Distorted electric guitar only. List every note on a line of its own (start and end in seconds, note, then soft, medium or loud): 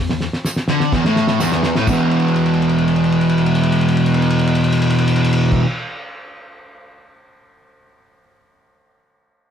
0.11 0.22 E2 medium
0.69 0.92 D3 loud
0.93 1.04 E2 loud
1.05 1.40 A2 loud
1.40 1.74 E2 medium
1.76 1.87 A2 loud
1.88 5.61 E2 loud
1.88 5.63 B2 loud
1.88 5.63 E3 loud